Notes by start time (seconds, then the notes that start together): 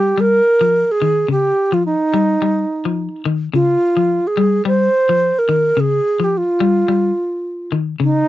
Already playing: G3 G4
0.18 G3 A#4
0.61 F3
0.92 G#4
1.02 D#3
1.28 C#3 G4
1.72 F3 F4
1.86 D#4
2.14 G3
2.42 G3
2.85 F3
3.25 D#3
3.54 C#3 F4
3.97 F3
4.27 G#4
4.37 G3
4.65 G3 C5
5.09 F3
5.39 A#4
5.49 D#3
5.77 C#3 G#4
6.20 F3
6.24 G4
6.37 F4
6.60 G3
6.88 G3
7.72 D#3
8.00 C#3 D#4